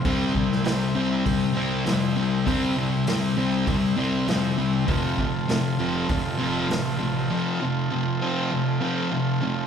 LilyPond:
<<
  \new Staff \with { instrumentName = "Transistor combo organ" } { \time 4/4 \key c \major \tempo 4 = 99 <e' g' c''>1~ | <e' g' c''>1 | <f' a' c''>1~ | <f' a' c''>1 | }
  \new Staff \with { instrumentName = "Distorted electric guitar" } { \clef bass \time 4/4 \key c \major <c g c'>8 <c g>8 <c g>8 <c g c'>8 <c g>8 <c g c'>8 <c g>8 <c g>8 | <c g c'>8 <c g>8 <c g>8 <c g c'>8 <c g>8 <c g c'>8 <c g>8 <c g>8 | <f, c f>8 <f, c>8 <f, c>8 <f, c f>8 <f, c>8 <f, c f>8 <f, c>8 <f, c>8 | <f, c f>8 <f, c>8 <f, c>8 <f, c f>8 <f, c>8 <f, c f>8 <f, c>8 <f, c>8 | }
  \new Staff \with { instrumentName = "Picked electric bass" } { \clef bass \time 4/4 \key c \major c,8 c,8 c,8 c,8 c,8 c,8 f,8 c,8 | c,8 c,8 c,8 c,8 c,8 c,8 f,8 c,8 | f,,8 f,,8 f,,8 f,,8 f,,8 f,,8 a,,8 a,,8 | r1 | }
  \new DrumStaff \with { instrumentName = "Drums" } \drummode { \time 4/4 <hho bd>8 bd16 sn16 <hho sn>4 <hho bd>4 <hho sn>4 | <hho bd>4 <hho sn>4 <hho bd>4 <hho sn>4 | <hho bd>8 bd8 <hho sn>4 <hho bd>4 <hho sn>4 | r4 r4 r4 r4 | }
>>